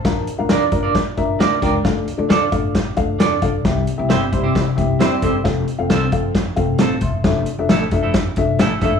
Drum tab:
HH |xxxxxxxx|xxxxxxxx|xxxxxxxx|xxxxxxxx|
SD |o-o-o-oo|o-o-o-o-|o-o-o-o-|o-o-o-o-|
BD |o--ooo-o|o--ooo-o|o--ooo-o|o--ooo-o|

HH |xxxxxxxx|
SD |o-o-o-o-|
BD |o--ooo-o|